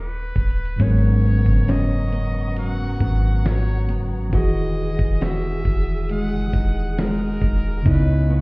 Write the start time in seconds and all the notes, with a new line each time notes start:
Already playing: D#1 B4
0.36 D#1, kick, closed hi-hat
0.51 closed hi-hat
0.65 closed hi-hat
0.76 G#1 G#2 F#3 B3 F#5 A#5 C#6, kick, closed hi-hat
0.80 B3 C#4 C#5
0.84 A#4
1.24 B3
1.46 F#1, kick
1.68 C#4 D#5, snare, closed hi-hat
2.12 B3, closed hi-hat
2.56 F#3 F#5, closed hi-hat
3.00 G#1 B3, kick, closed hi-hat
3.45 F#3 C#5, snare
3.89 F#1 B3, closed hi-hat
4.11 G#1
4.29 E1 D#3 E3 G#4 D#6, kick, closed hi-hat
4.34 F#4 G#4 D#5
4.99 E1, kick
5.21 F#4 E5, snare, closed hi-hat
5.65 E1, kick, closed hi-hat
6.09 G#3 F#5 F#6, closed hi-hat
6.32 F#1
6.53 E1 D#4, kick, closed hi-hat
6.97 G#3 A#4, snare
7.41 E1 D#4, kick, closed hi-hat
7.82 C#2 C#3 B3 B4 C#5 C#6, kick, closed hi-hat
7.86 D#4 E4 B4 D5
7.97 D#5
8.30 B3